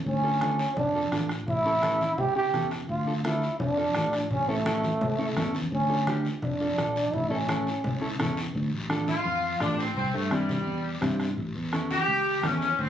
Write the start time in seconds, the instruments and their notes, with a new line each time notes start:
0.06 fingered electric bass D2, trombone C#4, bombo low, high conga, long guiro
0.23 clean electric guitar D4 F4 A4
0.41 clean electric guitar D4 F4 A4, bombo rim, high conga, short guiro
0.59 short guiro
0.77 fingered electric bass F2, trombone D4, bombo low, low conga, long guiro
0.95 clean electric guitar D4 F4 A4, high conga
1.12 fingered electric bass A1, clean electric guitar D4 F4 A4, bombo rim, high conga, short guiro
1.29 bombo rim, short guiro
1.48 fingered electric bass A1, trombone E4, bombo low, high conga, low conga, long guiro
1.65 clean electric guitar C#4 E4 A4
1.83 clean electric guitar C#4 E4 A4, bombo rim, high conga, short guiro
2.01 high conga, short guiro
2.18 fingered electric bass C#2, trombone G4, bombo low, low conga, long guiro
2.35 clean electric guitar C#4 E4 G4, trombone G4, high conga
2.54 fingered electric bass E2, clean electric guitar C#4 E4 A4, bombo rim, high conga, low conga, short guiro
2.71 bombo rim, short guiro
2.89 fingered electric bass D2, trombone F4, bombo low, high conga, long guiro
3.07 clean electric guitar D4 F4 A4
3.17 trombone F4
3.24 clean electric guitar D4 F4 A4, trombone E4, bombo rim, high conga, short guiro
3.42 short guiro
3.59 fingered electric bass F2, trombone D4, bombo low, low conga, long guiro
3.77 clean electric guitar D4 F4 A4, high conga
3.95 fingered electric bass A1, clean electric guitar D4 F4 A4, bombo rim, high conga, short guiro
4.13 bombo rim, short guiro
4.31 fingered electric bass A1, trombone C#4, bombo low, high conga, low conga, long guiro
4.48 trombone A3, clean electric guitar C#4 E4 A4
4.66 clean electric guitar C#4 E4 A4, bombo rim, high conga, short guiro
4.83 high conga, short guiro
5.01 fingered electric bass C#2, bombo low, low conga, long guiro
5.18 clean electric guitar C#4 E4 A4, high conga
5.37 fingered electric bass E2, clean electric guitar C#4 E4 A4, bombo low, bombo rim, high conga, short guiro
5.54 high conga, short guiro
5.72 fingered electric bass D2, trombone C#4, bombo low, high conga, long guiro
5.89 clean electric guitar D4 F4 A4
6.07 clean electric guitar D4 F4 G4, bombo rim, high conga, short guiro
6.25 short guiro
6.42 fingered electric bass F2, trombone D4, bombo low, low conga, long guiro
6.60 clean electric guitar D4 F4 A4, high conga
6.77 fingered electric bass A#1, clean electric guitar D4 F4 A4, bombo rim, high conga, short guiro
6.96 short guiro
7.13 fingered electric bass A1, trombone E4, bombo low, high conga, low conga, long guiro
7.30 clean electric guitar C#4 E4 A4, trombone C#4
7.48 clean electric guitar C#4 E4 A4, bombo rim, high conga, short guiro
7.67 short guiro
7.84 fingered electric bass C#2, bombo low, low conga, long guiro
8.01 clean electric guitar C#4 E4 A4, high conga
8.19 fingered electric bass E2, clean electric guitar C#4 E4 A4, bombo low, bombo rim, high conga, low conga, short guiro
8.37 short guiro
8.55 fingered electric bass D2, bombo low, long guiro
8.73 fingered electric bass A1
8.89 clean electric guitar D4 F4 A4, bombo rim, high conga, short guiro
9.07 saxophone section F4, high conga, short guiro
9.25 fingered electric bass F2, long guiro
9.60 fingered electric bass A1, saxophone section D4, clean electric guitar D4 F4 A4, bombo low, bombo rim, high conga, short guiro
9.78 saxophone section C4, short guiro
9.95 fingered electric bass C2, saxophone section C4, bombo low, long guiro
10.13 fingered electric bass G2, saxophone section A3
10.31 saxophone section G3, clean electric guitar C4 E4 G4, bombo rim, high conga, short guiro
10.49 high conga, low conga, short guiro
10.67 fingered electric bass E2, long guiro
11.01 fingered electric bass G2, clean electric guitar C4 E4 G4, bombo low, bombo rim, high conga, low conga, short guiro
11.20 bombo rim, short guiro
11.37 fingered electric bass A1, bombo low, long guiro
11.55 fingered electric bass E2
11.72 clean electric guitar C#4 E4 A4, bombo rim, high conga, short guiro
11.91 saxophone section G4, high conga, short guiro
12.08 fingered electric bass C#2, long guiro
12.43 fingered electric bass E2, clean electric guitar C#4 E4 A4, saxophone section C#4, bombo low, bombo rim, high conga, short guiro
12.61 saxophone section C#4, short guiro
12.79 fingered electric bass D2, saxophone section C4, bombo low, long guiro